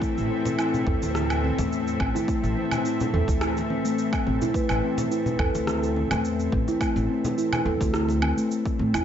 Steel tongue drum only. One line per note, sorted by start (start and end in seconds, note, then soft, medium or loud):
0.02 0.16 A3 medium
0.30 0.57 C4 medium
0.59 0.85 E4 medium
0.87 1.14 A4 medium
1.15 1.42 E4 medium
1.44 1.57 C4 medium
1.58 1.71 A3 loud
2.00 2.14 C4 medium
2.15 2.27 E4 loud
2.28 2.43 A3 medium
2.56 2.84 C4 medium
2.85 3.12 E4 medium
3.14 3.40 A4 medium
3.41 3.68 E4 medium
3.70 3.83 C4 medium
3.85 3.98 A3 loud
4.27 4.40 C4 medium
4.42 4.53 E4 loud
4.54 4.69 A3 medium
4.83 5.10 C4 medium
5.11 5.38 E4 medium
5.39 5.66 A4 medium
5.67 5.95 E4 medium
5.96 6.10 C4 medium
6.11 6.24 A3 medium
6.53 6.67 C4 medium
6.69 6.80 E4 medium
6.82 6.96 A3 medium
7.09 7.36 C4 medium
7.38 7.65 E4 medium
7.66 7.93 A4 medium
7.94 8.21 E4 medium
8.22 8.36 C4 medium
8.37 8.50 A3 medium
8.79 8.93 C4 medium
8.94 9.04 E4 loud